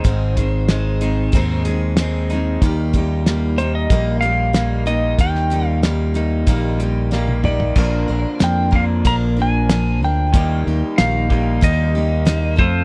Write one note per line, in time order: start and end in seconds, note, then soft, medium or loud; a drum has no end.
0.00 0.36 G#2 medium
0.00 0.67 G#3 medium
0.00 1.00 C4 medium
0.00 1.01 D#4 medium
0.00 1.62 C5 medium
0.04 1.29 G#1 loud
0.04 0.36 D#3 medium
0.04 0.37 G#3 medium
0.04 0.36 C4 medium
0.04 0.37 D#4 medium
0.04 0.36 G#4 medium
0.04 kick loud
0.04 closed hi-hat medium
0.36 1.97 D#3 medium
0.36 0.70 C4 soft
0.36 0.69 D#4 soft
0.36 0.69 G#4 soft
0.36 kick medium
0.36 closed hi-hat medium
0.40 0.69 G#3 soft
0.68 1.01 G#3 medium
0.68 1.02 C4 medium
0.68 1.02 D#4 medium
0.68 snare loud
0.68 closed hi-hat medium
0.73 1.00 G#4 medium
1.01 1.34 G#3 soft
1.01 1.34 C4 soft
1.01 1.34 D#4 medium
1.01 1.33 G#4 medium
1.01 closed hi-hat medium
1.32 2.58 D#2 medium
1.32 1.66 G#2 medium
1.32 1.66 D#3 medium
1.32 1.66 G#3 medium
1.32 1.66 C4 medium
1.32 1.66 D#4 medium
1.32 kick medium
1.32 closed hi-hat medium
1.37 1.66 G#4 medium
1.65 2.62 G#3 medium
1.65 1.99 D#4 medium
1.65 1.98 G#4 medium
1.65 closed hi-hat medium
1.70 1.97 G#3 soft
1.70 1.98 C4 soft
1.97 2.30 G#3 medium
1.97 2.30 C4 medium
1.97 2.31 D#4 medium
1.97 snare loud
1.97 closed hi-hat medium
2.01 2.31 G#4 medium
2.30 2.64 C4 soft
2.30 2.63 D#4 soft
2.30 2.63 G#4 medium
2.30 closed hi-hat medium
2.34 2.63 G#3 soft
2.62 3.86 D#2 loud
2.62 2.94 D#3 medium
2.62 2.95 G3 medium
2.62 2.95 A#3 medium
2.62 2.95 D#4 medium
2.62 2.94 G4 medium
2.62 kick loud
2.62 closed hi-hat medium
2.93 3.25 G3 medium
2.93 3.27 G4 medium
2.93 kick medium
2.93 closed hi-hat soft
2.98 3.27 A#3 soft
2.98 3.28 D#4 medium
3.26 3.59 G3 medium
3.26 3.59 A#3 medium
3.26 3.59 D#4 medium
3.26 snare medium
3.26 closed hi-hat medium
3.31 3.56 G4 medium
3.58 3.90 A#3 soft
3.58 3.91 D#4 soft
3.58 3.90 G4 soft
3.58 3.75 C5 medium
3.58 closed hi-hat medium
3.75 4.20 D#5 medium
3.90 5.15 A#1 medium
3.90 4.22 D#3 medium
3.90 4.23 G3 medium
3.90 4.23 A#3 medium
3.90 4.23 D#4 medium
3.90 4.21 G4 medium
3.90 kick loud
3.90 closed hi-hat medium
4.21 5.51 G3 medium
4.21 4.54 D#4 soft
4.21 4.54 G4 medium
4.21 4.86 F5 medium
4.21 closed hi-hat medium
4.53 4.86 G3 medium
4.53 4.87 A#3 medium
4.53 4.86 D#4 medium
4.53 4.85 G4 medium
4.53 snare loud
4.53 closed hi-hat medium
4.86 5.18 A#3 soft
4.86 5.19 D#4 soft
4.86 5.19 G4 soft
4.86 5.17 D#5 medium
4.86 closed hi-hat medium
5.19 6.44 D#2 loud
5.19 5.51 D#3 medium
5.19 5.51 G3 medium
5.19 5.51 A#3 medium
5.19 5.51 D#4 medium
5.19 5.49 G4 medium
5.19 5.66 G5 medium
5.19 kick loud
5.19 closed hi-hat medium
5.35 snare soft
5.50 5.83 G3 medium
5.50 5.83 A#3 soft
5.50 5.84 D#4 soft
5.50 5.83 G4 medium
5.50 closed hi-hat medium
5.66 5.80 F5 medium
5.83 6.15 G3 soft
5.83 6.15 A#3 medium
5.83 6.14 D#4 medium
5.83 6.13 G4 medium
5.83 snare loud
5.83 closed hi-hat medium
6.14 6.48 A#3 soft
6.14 6.48 D#4 soft
6.14 6.47 G4 medium
6.14 closed hi-hat medium
6.47 7.72 A#1 medium
6.47 6.80 D#3 medium
6.47 6.80 G3 medium
6.47 6.81 A#3 medium
6.47 6.81 D#4 medium
6.47 6.79 G4 loud
6.47 kick medium
6.47 closed hi-hat medium
6.79 7.76 G3 medium
6.79 7.12 D#4 medium
6.79 7.12 G4 medium
6.79 closed hi-hat medium
6.84 7.10 A#3 soft
7.11 7.44 G3 medium
7.11 7.44 A#3 medium
7.11 7.45 D#4 medium
7.11 7.43 G4 medium
7.11 snare medium
7.28 high tom medium
7.44 7.77 A#3 soft
7.44 7.77 D#4 soft
7.44 7.76 G4 medium
7.44 8.44 D5 medium
7.44 mid tom medium
7.60 floor tom medium
7.75 8.07 A#1 loud
7.75 8.08 A#2 medium
7.75 8.71 D3 medium
7.75 8.09 F3 medium
7.75 8.09 A#3 medium
7.75 8.08 D4 medium
7.75 8.07 A#4 medium
7.75 kick loud
7.75 crash loud
8.08 8.24 A#1 medium
8.08 8.39 A#3 soft
8.08 8.40 D4 soft
8.08 8.40 A#4 medium
8.39 9.02 F2 medium
8.39 8.72 F3 medium
8.39 8.73 A#3 medium
8.39 8.72 D4 soft
8.39 8.70 A#4 medium
8.39 snare loud
8.39 closed hi-hat medium
8.44 8.75 G5 medium
8.71 10.32 D3 medium
8.71 10.32 F3 medium
8.71 9.04 A#3 soft
8.71 9.05 D4 soft
8.71 9.04 A#4 medium
8.71 kick medium
8.75 10.33 A#2 medium
8.75 8.84 F5 medium
9.05 10.03 A#1 medium
9.05 9.37 A#2 medium
9.05 9.37 F3 medium
9.05 9.37 A#3 medium
9.05 9.37 D4 medium
9.05 9.35 A#4 medium
9.05 9.15 A#5 loud
9.05 kick loud
9.05 closed hi-hat medium
9.37 9.70 A#3 soft
9.37 9.70 D4 soft
9.37 9.69 A#4 medium
9.42 10.04 G#5 medium
9.69 10.02 F3 medium
9.69 10.02 A#3 medium
9.69 10.03 D4 medium
9.69 10.01 A#4 medium
9.69 snare loud
9.69 closed hi-hat medium
10.03 10.33 D2 medium
10.03 10.34 A#3 soft
10.03 10.35 D4 soft
10.03 10.34 A#4 soft
10.03 10.63 G5 medium
10.34 10.64 D#2 loud
10.34 10.66 D#3 medium
10.34 11.28 G3 medium
10.34 10.67 A#3 medium
10.34 10.67 D#4 medium
10.34 10.66 G4 medium
10.34 kick loud
10.34 closed hi-hat medium
10.67 10.82 D#2 medium
10.67 11.00 D#4 medium
10.67 10.99 G4 medium
10.71 10.99 A#3 soft
10.98 11.60 A#1 medium
10.98 11.30 D#3 medium
10.98 11.31 A#3 medium
10.98 11.31 D#4 medium
10.98 11.64 F5 medium
10.98 snare loud
10.98 closed hi-hat medium
11.02 11.29 G4 medium
11.30 12.58 D#3 medium
11.30 12.58 G3 medium
11.30 11.61 A#3 soft
11.30 11.62 D#4 soft
11.30 11.62 G4 medium
11.30 kick medium
11.61 12.58 D#2 loud
11.61 11.94 D#3 medium
11.61 11.95 A#3 medium
11.61 11.95 D#4 medium
11.61 11.94 G4 medium
11.61 12.62 D#5 medium
11.61 kick loud
11.61 closed hi-hat medium
11.95 12.25 A#3 soft
11.95 12.27 D#4 soft
11.95 12.27 G4 medium
12.25 12.58 D#3 medium
12.25 12.58 A#3 medium
12.25 12.57 D#4 medium
12.25 12.56 G4 medium
12.25 snare loud
12.25 closed hi-hat medium
12.56 12.84 F2 medium
12.56 12.84 F3 soft
12.56 12.84 A3 soft
12.56 12.84 C4 soft
12.56 12.84 A4 soft
12.56 12.84 C5 medium
12.56 kick medium
12.60 12.84 F4 loud
12.60 12.84 A4 loud